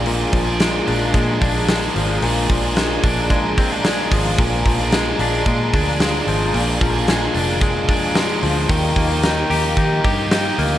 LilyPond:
<<
  \new Staff \with { instrumentName = "Analog synth pad" } { \time 4/4 \key bes \mixolydian \tempo 4 = 111 << { <aes' d'' bes''>1~ | <aes' d'' bes''>1~ | <aes' d'' bes''>1~ | <aes' d'' bes''>1 |
<g' ees'' bes''>1 | } \\ { f''1~ | f''1~ | f''1~ | f''1~ |
f''1 | } >> }
  \new Staff \with { instrumentName = "Overdriven electric guitar" } { \time 4/4 \key bes \mixolydian <bes, f aes d' aes'>8. <aes d' aes'>8. <f aes d' aes'>4 <f aes d' aes'>8 <f aes d' aes'>4 | <bes, f aes d' aes'>8. <aes d' aes'>8. <f aes d' aes'>4 <f aes d' aes'>8 <f aes d' aes'>4 | <bes, f aes d' aes'>8. <aes d' aes'>8. <f aes d' aes'>4 <f aes d' aes'>8 <f aes d' aes'>4 | <bes, f aes d' aes'>8. <aes d' aes'>8. <f aes d' aes'>4 <f aes d' aes'>8 <f aes d' aes'>4 |
<ees f bes ees' g'>8. <bes ees' g'>8. <f bes ees' g'>4 <f bes ees' g'>8 <f bes ees' g'>4 | }
  \new Staff \with { instrumentName = "Clean electric guitar" } { \clef bass \time 4/4 \key bes \mixolydian bes,8 f8 aes8 d'8 aes8 d'8 aes8 f8 | bes,8 f8 aes8 d'8 aes8 c'16 d'16 aes8 f8 | bes,8 f8 aes8 d'8 aes8 d'8 aes8 f8 | bes,8 f8 aes8 d'8 aes8 d'8 aes8 f8 |
ees8 bes8 ees'8 g'8 ees'8 g'8 ees'8 bes8 | }
  \new Staff \with { instrumentName = "Fingered electric bass" } { \clef bass \time 4/4 \key bes \mixolydian bes,,8 bes,,4 bes,,8 bes,8 bes,,4 aes,,8 | bes,,8 bes,,4 bes,,2 aes,,8 | bes,,8 bes,,4 bes,,8 bes,8 d,4 aes,,8 | bes,,8 bes,,4 f,,2 d,8 |
ees,8 ees,4 ees,8 ees8 g,4 d,8 | }
  \new DrumStaff \with { instrumentName = "Drums" } \drummode { \time 4/4 <hho hhp>8 <hho hhp bd>8 <hho hhp sn>8 <hho hhp>8 <hho hhp bd>8 <hho hhp bd>8 <hho hhp sn>8 <hho hhp>8 | <hho hhp>8 <hho hhp bd>8 <hho hhp sn>8 <hho hhp bd>8 <hho hhp bd>8 <hho hhp bd>8 <hho hhp sn>8 <hho hhp bd>8 | <hho hhp bd>8 <hho hhp bd>8 <hho hhp sn>8 <hho hhp>8 <hho hhp bd>8 <hho hhp bd>8 <hho hhp sn>8 <hho hhp>8 | <hho hhp>8 <hho hhp bd>8 <hho hhp sn>8 <hho hhp>8 <hho hhp bd>8 <hho hhp bd>8 <hho hhp sn>8 <hho hhp>8 |
<hho hhp bd>8 <hho hhp bd>8 <hho hhp sn>8 <hho hhp>8 <hho hhp bd>8 <hho hhp bd>8 <hho hhp sn>8 <hho hhp>8 | }
>>